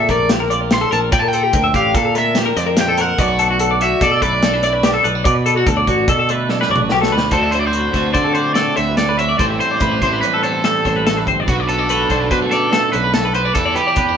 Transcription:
Already playing: D3 A3 C4 F4 E5
0.09 A#1 A3 A#4 D5, kick, closed hi-hat
0.29 F2 C4 G4, snare, closed hi-hat
0.40 A#4
0.50 F4 D5, closed hi-hat
0.61 A#4
0.71 A#2 G4 C6, snare, closed hi-hat
0.81 A4
0.91 A#1 C4 A#4 A5, closed hi-hat
1.12 A#2 D5 G5, kick, closed hi-hat
1.19 A#4 A5
1.28 G5
1.33 C4 A4, closed hi-hat
1.43 G4
1.53 D2 A#4, kick, snare, closed hi-hat
1.64 E5
1.74 A1 D3 G4 F5, kick, closed hi-hat
1.95 A#2 A4, kick, snare, closed hi-hat
2.05 A4
2.15 A3 A#4 E5, closed hi-hat
2.35 F2 C4 G4, snare, closed hi-hat
2.46 A#4
2.56 F2 C4 D5, snare, closed hi-hat
2.66 A#4
2.77 A#2 G4, snare, closed hi-hat
2.81 G5
2.88 A4
2.97 C4 A#4 F#5, closed hi-hat
3.18 B1 B2 D3 A3 D4 F#4 D5, kick, closed hi-hat
3.29 B4
3.39 D4 A4, closed hi-hat
3.51 F#4
3.59 A4, closed hi-hat
3.71 D5
3.81 D3 F#4 E5, closed hi-hat
4.01 B2 A4 D5, kick, snare, closed hi-hat
4.11 A4
4.22 B1 A3 B4 D5, kick, closed hi-hat
4.43 F#2 D4 A4, snare, closed hi-hat
4.54 B4
4.63 E4 D5, snare, closed hi-hat
4.73 F#4 B4
4.83 B2 G4, snare, closed hi-hat
4.94 A4
5.04 B1 B3 B4, closed hi-hat
5.15 D4
5.24 B2 D5, kick, closed hi-hat
5.35 B4
5.46 B3 A4, closed hi-hat
5.56 D4 F#4
5.67 D2 A4, kick, closed hi-hat
5.77 D5
5.87 A1 D3 F#4, kick, closed hi-hat
6.08 B2 A4, kick, closed hi-hat
6.19 A4
6.29 A3 B4, closed hi-hat
6.49 F#2 D4 A4, snare
6.61 B4, snare
6.70 A1 F#4 D5
6.76 mid tom
6.82 B4
6.89 B1 B2 G4, snare
7.01 A4, snare
7.12 D2 D4 B4
7.18 snare
7.31 D2 D3 A3 C4 F#4 A4 C5, kick, closed hi-hat
7.43 E5
7.51 E4 C5, closed hi-hat
7.61 D5
7.66 F#4 C5
7.73 F#4 B4, closed hi-hat
7.93 D2 D3 A3 C4 F#4 C5, kick, snare, closed hi-hat
8.04 B4
8.13 D3 C4 C5 D5, kick, closed hi-hat
8.24 A4
8.35 A2 F#4 C5 D5, closed hi-hat
8.54 C4 A4 D5, snare, closed hi-hat
8.76 D2 C5 E5, closed hi-hat
8.87 B4
8.97 D3 A4 D5, snare, closed hi-hat
9.09 B4
9.19 F#4 C5 E5, closed hi-hat
9.29 D5
9.39 A1 A2 E3 G3 A3 C4 E4 G4 C5 D5, kick, closed hi-hat
9.50 E5
9.60 C4 C5, closed hi-hat
9.71 D5
9.80 A1 E4 B4, kick, closed hi-hat
9.91 G4
10.01 A1 A2 E3 A3 C4 E4 C5, kick, closed hi-hat
10.13 B4
10.21 G3 B4 C5, closed hi-hat
10.34 A4
10.43 E2 C4 A4 C5, closed hi-hat
10.64 G3 A4, snare, closed hi-hat
10.85 A1 C5, kick, snare, closed hi-hat
10.96 B4
11.05 A2 A4, snare, closed hi-hat
11.17 B4
11.27 G1 C4 C5, kick, closed hi-hat
11.40 D5
11.46 B1 B2 F#3 B3 D4 F#4 B4, kick, closed hi-hat
11.60 D5
11.68 B3 A4 B4, closed hi-hat
11.79 D4 D5
11.89 F#4 B4, closed hi-hat
12.09 B1 B2 D3 F#3 B3 D4 F#4 C5, kick, closed hi-hat
12.21 B4
12.31 B2 G3 B4 C5, kick, closed hi-hat
12.42 A3 A4
12.51 F#2 D4 A4 D5, snare, closed hi-hat
12.72 A3 A4, snare, closed hi-hat
12.92 B1 B4 C5, closed hi-hat
13.04 B4
13.14 B2 A4, snare, closed hi-hat
13.25 B4
13.34 B3 B4 C5, closed hi-hat
13.45 D4 D5
13.55 E2 E3 B3 E4 G4 A4 B4, kick, closed hi-hat
13.66 D5
13.75 B3 G4 B4, closed hi-hat
13.87 D4 D5
13.96 E2 B3 B4, kick, closed hi-hat
14.09 D4

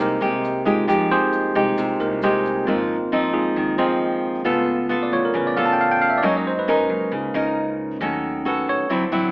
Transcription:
Already playing: G#3 A#3 C4 D#4 G4 G#4 C5
0.00 C2 C3 G3 G#3 A#3 D#4 A#4, shaker
0.21 C2 G#3 D#4 G4, shaker
0.44 shaker
0.65 G#3 D#4 F4 G4 G#4, shaker
0.88 F2 F3 G#3 D#4 G4, shaker
1.11 C4 G4 G#4 C5, shaker
1.33 shaker
1.55 C2 G#3 D#4 G4, shaker
1.78 C2 C3, shaker
1.99 C2 G3 G#3 A#3 D#4 A#4, shaker
2.22 G#3 C4 D#4 G4 G#4 C5, shaker
2.46 shaker
2.65 G#1 G#2 F3 A#3 C4 D#4 F4 A#4
3.12 F3 C4 D#4
3.32 D#2 G#3 A#3 C4 D#4 F4 G#4
3.56 D#2 D#3
3.78 D#2 F3 C4 D#4 F4 G#4 C5
4.44 C#2 C#3 A3 B3 F4 A4
4.89 B3 F4 A4
5.03 D5
5.12 A1 A3 B3 F4 C#5
5.25 A#4
5.34 A1 C#3 B4
5.47 D5
5.57 A1 B3 F4 A4 F5
5.66 A5
5.73 G5
5.81 F5
5.91 G5
6.02 F5
6.10 E5
6.18 D5
6.22 F#2 F#3 G#3 A#3 C#4 D#4 A#4 C#5
6.37 D#5
6.47 C5
6.59 B4
6.68 C#4 D#4 A#4
6.89 C#2 G#3 A#3 D#4
7.12 C#2 C#3
7.34 C#2 C#4 D#4 A#4
8.00 D#2 D#3 F#3 A3 C#4 F#4 A4
8.45 C#4 F#4 A4 B4
8.67 A2 C#5
8.90 D2 D3 F#3 C4 E4 C5
9.12 A1 F#3 C4 E4

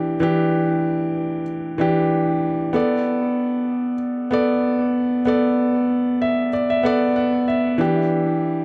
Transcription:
Already playing: E3 D4 G4
0.20 E3 D4 G4
1.78 E3 D4 G4
2.73 B3 A4 D5
4.31 B3 A4 D5
5.25 B3 A4 D5
6.22 E5
6.53 D5
6.70 E5
6.83 B3 A4 D5 F#5
7.16 F#5
7.48 E5
7.78 E3 D4 G4

